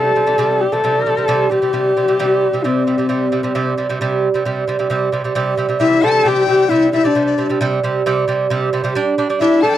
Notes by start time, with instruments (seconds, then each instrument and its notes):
Already playing: lute C3 G3, horsehead fiddle A4
0.16 lute C3 G3
0.27 lute C3 G3
0.38 lute C3 G3
0.62 horsehead fiddle G4
0.72 lute C3 G3, horsehead fiddle A4
0.84 lute C3 G3
1.06 lute C3 G3
1.17 lute C3 G3
1.28 lute C3 G3
1.50 lute C3 G3, horsehead fiddle G4
1.62 lute C3 G3
1.73 lute C3 G3
1.97 lute C3 G3
2.08 lute C3 G3
2.19 lute C3 G3
2.53 lute C3 G3
2.64 lute C3 G3, horsehead fiddle C4
2.87 lute C3 G3
2.98 lute C3 G3
3.09 lute C3 G3
3.32 lute C3 G3
3.43 lute C3 G3
3.55 lute C3 G3
3.78 lute C3 G3
3.89 lute C3 G3
4.01 lute C3 G3
4.34 lute C3 G3
4.45 lute C3 G3
4.68 lute C3 G3
4.79 lute C3 G3
4.90 lute C3 G3
5.12 lute C3 G3
5.24 lute C3 G3
5.35 lute C3 G3
5.57 lute C3 G3
5.69 lute C3 G3
5.79 lute C3 G3, horsehead fiddle E4, dizi E5
6.02 lute C3 G3, horsehead fiddle A4, dizi A5
6.23 lute C3 G3, dizi G5
6.28 horsehead fiddle G4
6.48 lute C3 G3, horsehead fiddle G4
6.70 lute C3 G3, horsehead fiddle E4, dizi E5
6.93 lute C3 G3, horsehead fiddle E4, dizi E5
7.04 lute C3 G3, horsehead fiddle D4, dizi D5
7.15 lute C3 G3
7.26 dizi D5
7.38 lute C3 G3
7.50 lute C3 G3
7.61 lute C3 G3
7.83 lute C3 G3
8.06 lute C3 G3
8.28 lute C3 G3
8.50 lute C3 G3
8.73 lute C3 G3
8.84 lute C3 G3
8.95 lute G3 D4
9.18 lute G3 D4
9.29 lute G3 D4
9.39 lute G3 D4, horsehead fiddle E4, dizi E5
9.61 lute G3 D4, horsehead fiddle A4, dizi A5
9.69 dizi G5
9.74 dizi A5